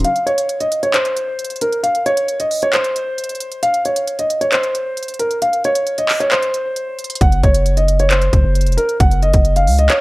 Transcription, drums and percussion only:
0.04 closed hi-hat
0.16 closed hi-hat
0.27 closed hi-hat
0.38 closed hi-hat
0.49 closed hi-hat
0.60 closed hi-hat
0.72 closed hi-hat
0.83 closed hi-hat
0.94 clap, closed hi-hat
1.05 closed hi-hat
1.17 closed hi-hat
1.39 closed hi-hat
1.45 closed hi-hat
1.50 closed hi-hat
1.56 closed hi-hat
1.61 closed hi-hat
1.73 closed hi-hat
1.84 closed hi-hat
1.95 closed hi-hat
2.06 closed hi-hat
2.17 closed hi-hat
2.28 closed hi-hat
2.40 closed hi-hat
2.51 open hi-hat
2.62 closed hi-hat
2.73 clap, closed hi-hat
2.84 closed hi-hat
2.96 closed hi-hat
3.18 closed hi-hat
3.24 closed hi-hat
3.29 closed hi-hat
3.35 closed hi-hat
3.40 closed hi-hat
3.52 closed hi-hat
3.63 closed hi-hat
3.74 closed hi-hat
3.85 closed hi-hat
3.96 closed hi-hat
4.08 closed hi-hat
4.19 closed hi-hat
4.30 closed hi-hat
4.41 closed hi-hat
4.52 clap, closed hi-hat
4.63 closed hi-hat
4.75 closed hi-hat
4.97 closed hi-hat
5.03 closed hi-hat
5.08 closed hi-hat
5.14 closed hi-hat
5.20 closed hi-hat
5.31 closed hi-hat
5.42 closed hi-hat
5.53 closed hi-hat
5.64 closed hi-hat
5.75 closed hi-hat
5.87 closed hi-hat
5.98 closed hi-hat
6.09 clap, open hi-hat
6.20 closed hi-hat
6.31 clap, closed hi-hat
6.43 closed hi-hat
6.54 closed hi-hat
6.76 closed hi-hat
6.99 closed hi-hat
7.04 closed hi-hat
7.10 closed hi-hat
7.15 closed hi-hat
7.21 kick, closed hi-hat
7.32 closed hi-hat
7.43 kick, closed hi-hat
7.54 closed hi-hat
7.66 closed hi-hat
7.77 closed hi-hat
7.88 closed hi-hat
7.99 closed hi-hat
8.11 clap, closed hi-hat
8.22 closed hi-hat
8.33 kick, closed hi-hat
8.55 closed hi-hat
8.61 closed hi-hat
8.67 closed hi-hat
8.72 closed hi-hat
8.78 closed hi-hat
8.89 closed hi-hat
9.00 kick, closed hi-hat
9.11 closed hi-hat
9.22 closed hi-hat
9.34 kick, closed hi-hat
9.45 closed hi-hat
9.56 closed hi-hat
9.67 open hi-hat
9.78 closed hi-hat
9.90 clap, closed hi-hat

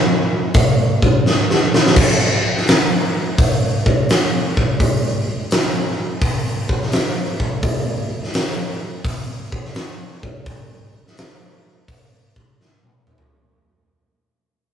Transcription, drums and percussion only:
0.54 kick, open hi-hat
1.02 kick
1.26 snare
1.50 snare
1.74 snare
1.86 snare
1.96 kick, crash
2.57 snare
2.68 snare, open hi-hat
3.38 kick, open hi-hat
3.86 kick
4.09 snare, open hi-hat
4.57 kick
4.80 kick, open hi-hat
5.51 snare, open hi-hat
6.22 kick, open hi-hat
6.69 kick
6.83 snare
6.92 snare, open hi-hat
7.40 kick
7.63 kick, open hi-hat
8.24 snare
8.34 snare, open hi-hat
9.05 kick, open hi-hat
9.52 kick
9.65 snare
9.75 snare, open hi-hat
10.23 kick
10.46 kick, open hi-hat
11.07 snare
11.17 snare, open hi-hat
11.88 kick, open hi-hat
12.36 kick
12.61 snare
12.83 high tom
13.07 mid tom
13.18 floor tom

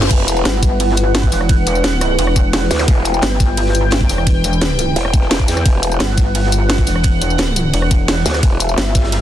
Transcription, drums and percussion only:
0.02 snare, tambourine
0.10 kick, closed hi-hat, ride, crash
0.28 closed hi-hat, tambourine
0.37 tambourine
0.45 snare, closed hi-hat, ride
0.55 snare
0.62 kick, closed hi-hat, tambourine
0.80 closed hi-hat, open hi-hat, ride
0.89 snare
0.97 closed hi-hat, tambourine
1.14 snare, closed hi-hat, ride
1.23 kick, closed hi-hat
1.32 snare, closed hi-hat, open hi-hat, tambourine
1.41 cross-stick
1.49 kick, closed hi-hat, ride
1.67 closed hi-hat, tambourine
1.75 tambourine
1.84 snare, closed hi-hat, ride
2.01 cross-stick, closed hi-hat, tambourine
2.19 closed hi-hat, ride
2.27 cross-stick
2.36 kick, closed hi-hat, tambourine
2.53 snare, closed hi-hat, ride
2.62 snare
2.71 snare, closed hi-hat, open hi-hat, tambourine
2.75 snare, closed hi-hat
2.79 cross-stick, snare, closed hi-hat, tambourine
2.88 kick, closed hi-hat, ride
3.05 closed hi-hat, tambourine
3.14 tambourine
3.22 snare, closed hi-hat, ride
3.32 snare
3.39 kick, snare, closed hi-hat, tambourine
3.57 closed hi-hat, open hi-hat, ride
3.66 snare
3.75 closed hi-hat, tambourine
3.91 snare, closed hi-hat, ride
4.00 kick, closed hi-hat
4.09 snare, closed hi-hat, open hi-hat, tambourine
4.18 cross-stick
4.27 kick, closed hi-hat, ride
4.44 closed hi-hat, tambourine
4.53 tambourine
4.61 snare, closed hi-hat, ride
4.79 closed hi-hat, tambourine
4.96 closed hi-hat, ride
5.05 cross-stick
5.13 kick, closed hi-hat, tambourine
5.22 snare
5.31 snare, closed hi-hat, ride
5.39 kick, snare
5.48 snare, closed hi-hat, open hi-hat, tambourine
5.56 cross-stick, snare, tambourine
5.66 kick, closed hi-hat, ride
5.83 closed hi-hat, tambourine
5.92 tambourine
6.00 snare, closed hi-hat, ride
6.09 snare
6.17 kick, snare, closed hi-hat, tambourine
6.35 closed hi-hat, open hi-hat, ride
6.43 snare
6.52 closed hi-hat, tambourine
6.69 snare, closed hi-hat, ride
6.78 kick, closed hi-hat
6.87 snare, closed hi-hat, open hi-hat, tambourine
6.96 cross-stick
7.03 kick, closed hi-hat, ride
7.21 closed hi-hat, tambourine
7.30 tambourine
7.38 snare, closed hi-hat, ride
7.56 closed hi-hat, tambourine
7.73 closed hi-hat, ride
7.82 cross-stick
7.91 kick, closed hi-hat, tambourine
8.08 snare, closed hi-hat, ride
8.17 snare
8.26 snare, closed hi-hat, open hi-hat, tambourine
8.29 snare, closed hi-hat
8.34 cross-stick, snare, closed hi-hat, tambourine
8.43 kick, closed hi-hat, ride
8.60 closed hi-hat, tambourine
8.69 tambourine
8.78 snare, closed hi-hat, ride
8.87 snare
8.95 kick, snare, closed hi-hat, tambourine
9.04 snare, closed hi-hat
9.12 snare, closed hi-hat, ride

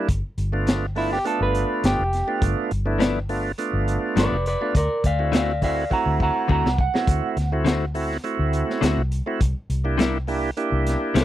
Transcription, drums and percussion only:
0.09 kick, closed hi-hat
0.38 closed hi-hat
0.67 snare, closed hi-hat
0.96 open hi-hat
1.13 snare
1.25 closed hi-hat
1.55 closed hi-hat
1.84 snare, closed hi-hat
2.13 snare, closed hi-hat
2.42 kick, closed hi-hat
2.71 closed hi-hat
3.00 snare, closed hi-hat
3.29 open hi-hat
3.58 closed hi-hat
3.88 closed hi-hat
4.17 snare, closed hi-hat
4.46 closed hi-hat
4.75 kick, closed hi-hat
5.04 kick, closed hi-hat
5.33 snare, closed hi-hat
5.62 kick, open hi-hat
5.91 kick
6.20 kick
6.49 kick
6.66 snare
6.78 kick
6.95 snare
7.07 kick, closed hi-hat
7.37 snare, closed hi-hat
7.66 snare, closed hi-hat
7.95 open hi-hat
8.12 snare
8.24 closed hi-hat
8.53 closed hi-hat
8.70 snare
8.82 snare, closed hi-hat
9.12 closed hi-hat
9.41 kick, closed hi-hat
9.70 closed hi-hat
9.99 snare, closed hi-hat
10.28 open hi-hat
10.57 closed hi-hat
10.86 snare, closed hi-hat
11.15 snare, closed hi-hat

